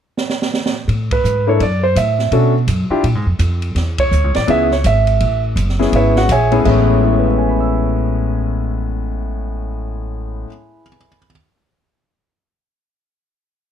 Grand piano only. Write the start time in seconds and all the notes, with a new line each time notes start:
1.13 B4
1.47 A#3 D4 E4 A4 C#5
1.63 D5
1.83 C5
1.97 E5
2.32 C#4 D4 F#4 A4
2.90 D4 E4 F4 G4
4.00 C#5
4.36 D5
4.47 B3 C#4 E4 G#4 E5
4.73 C#5
4.86 E5
5.79 B3 C#4 E4 G#4
5.96 E4 B4 C#5 E5
6.18 F#4 F#5
6.32 G#4 C#5 E5 G#5
6.51 A2 B3 C#4 E4 G#4
6.65 A2 G#3 B3 C#4 E5
7.04 E4
7.11 G#4
7.19 B4
7.28 E5
7.38 G#5
7.49 B5
7.60 E6